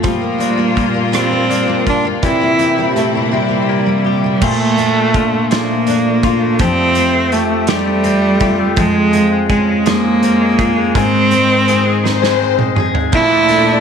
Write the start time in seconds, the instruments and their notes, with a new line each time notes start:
Already playing: steel-string acoustic guitar F2 A3 C4, clean electric guitar A3 C4 F4
0.03 string section A#2 G3 F4, clean electric guitar F3, steel-string acoustic guitar G3 F4, cello A#3, kick, closed hi-hat
0.21 steel-string acoustic guitar A#3
0.39 clean electric guitar C4, steel-string acoustic guitar D4, closed hi-hat
0.58 steel-string acoustic guitar A#3, clean electric guitar D4
0.75 clean electric guitar A#3, steel-string acoustic guitar F4, kick, closed hi-hat
0.94 steel-string acoustic guitar A#3
1.12 steel-string acoustic guitar G3 F4, cello C4, clean electric guitar D4, cross-stick, closed hi-hat
1.31 steel-string acoustic guitar A#3
1.49 clean electric guitar A#3, steel-string acoustic guitar D4, closed hi-hat
1.68 steel-string acoustic guitar A#3
1.87 cello D4, steel-string acoustic guitar F4, clean electric guitar F4, kick, closed hi-hat
2.05 steel-string acoustic guitar A#3
2.23 string section A#2 C3 E4, steel-string acoustic guitar C3 G4, clean electric guitar E3, cello E4, kick, closed hi-hat
2.41 steel-string acoustic guitar A#3
2.59 clean electric guitar C4, steel-string acoustic guitar E4, closed hi-hat
2.78 steel-string acoustic guitar G3
2.95 cello A3, steel-string acoustic guitar G4, closed hi-hat
3.15 steel-string acoustic guitar A#3
3.32 steel-string acoustic guitar C3 G4, cello G3, clean electric guitar C4
3.49 steel-string acoustic guitar A#3
3.69 clean electric guitar A#3, steel-string acoustic guitar E4
3.86 steel-string acoustic guitar G3
4.04 steel-string acoustic guitar G4, clean electric guitar G4
4.24 steel-string acoustic guitar A#3
4.41 steel-string acoustic guitar A#2, clean electric guitar F3 F4, cello A3, kick, crash
4.61 clean electric guitar A3
4.78 steel-string acoustic guitar A3, clean electric guitar D4, closed hi-hat
4.97 clean electric guitar A3
5.14 steel-string acoustic guitar D4, clean electric guitar F4, kick, closed hi-hat
5.33 clean electric guitar A3
5.50 clean electric guitar F3 F4, cello A#3, snare, closed hi-hat
5.87 clean electric guitar D4, steel-string acoustic guitar D4, closed hi-hat
6.23 clean electric guitar F4, steel-string acoustic guitar F4, kick, closed hi-hat
6.42 clean electric guitar A3
6.59 steel-string acoustic guitar F2, clean electric guitar F3 G4, cello C4, kick, closed hi-hat
6.79 clean electric guitar A3
6.95 steel-string acoustic guitar A3, clean electric guitar C4, closed hi-hat
7.14 clean electric guitar A3
7.32 cello A3, steel-string acoustic guitar C4, clean electric guitar G4, closed hi-hat
7.50 clean electric guitar A3
7.67 clean electric guitar F3 G4, cello G3, steel-string acoustic guitar A3, snare, closed hi-hat
7.86 clean electric guitar A3
8.04 clean electric guitar C4, steel-string acoustic guitar C4, closed hi-hat
8.22 clean electric guitar A3
8.40 steel-string acoustic guitar F4, clean electric guitar G4, kick, closed hi-hat
8.59 clean electric guitar A3
8.76 steel-string acoustic guitar F2, clean electric guitar F3 G#4, cello G#3, kick, closed hi-hat
8.95 clean electric guitar G#3
9.13 steel-string acoustic guitar G#3, clean electric guitar C4, closed hi-hat
9.32 clean electric guitar G#3
9.50 cello G#3, steel-string acoustic guitar C#4, clean electric guitar G#4, kick, closed hi-hat
9.68 clean electric guitar G#3
9.86 clean electric guitar F3 G#4, steel-string acoustic guitar G#3, cello A#3, snare, closed hi-hat
10.05 clean electric guitar G#3
10.22 clean electric guitar C4, steel-string acoustic guitar C#4, closed hi-hat
10.41 clean electric guitar G#3
10.59 steel-string acoustic guitar F4, clean electric guitar G#4, kick, closed hi-hat
10.78 clean electric guitar G#3
10.95 steel-string acoustic guitar G#2, clean electric guitar D#3 G#4, cello C4, kick, closed hi-hat
11.14 clean electric guitar G#3
11.31 steel-string acoustic guitar C4, clean electric guitar C4, closed hi-hat
11.50 clean electric guitar G#3
11.67 steel-string acoustic guitar D#4, violin section G#4, clean electric guitar G#4, closed hi-hat
11.86 clean electric guitar G#3
12.03 clean electric guitar D#3 G#4, steel-string acoustic guitar C4, violin section C5, snare
12.22 clean electric guitar G#3, snare
12.39 clean electric guitar C4, steel-string acoustic guitar D#4
12.57 clean electric guitar G#3, mid tom
12.75 clean electric guitar G#4, steel-string acoustic guitar G#4, mid tom
12.94 clean electric guitar G#3, floor tom
13.12 steel-string acoustic guitar A#2, string section A#2 A3 D4, clean electric guitar F3, cello E4, kick, crash
13.31 clean electric guitar A3
13.48 steel-string acoustic guitar A3, clean electric guitar D4, closed hi-hat
13.67 clean electric guitar A3